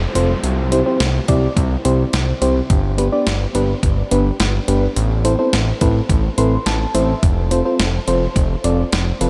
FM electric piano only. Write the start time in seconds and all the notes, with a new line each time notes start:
0.15 C4 F4 A4 C5
0.72 C4 E4 G4 C5
0.86 C4 E4 G4 C5
1.29 C4 E4 G4 D5
1.85 C4 E4 G4 C5
2.42 C4 E4 G4 C5
2.98 B3 D4 G4 B4
3.12 B3 D4 G4 D5
3.55 B3 D4 G4 B4
4.11 B3 D4 G4 B4
4.68 B3 D4 G4 B4
5.25 C4 E4 A4 C5
5.39 C4 E4 A4 C5
5.81 C4 E4 A4 B4
6.38 C4 E4 A4 B4 C6
6.66 A5
6.95 C4 E4 A4 C5 E5
7.51 C4 F4 A4 C5
7.65 C4 F4 A4 C5
8.08 C4 F4 A4 C5
8.64 C4 F4 A4 D5
9.21 C4 F4 A4 B4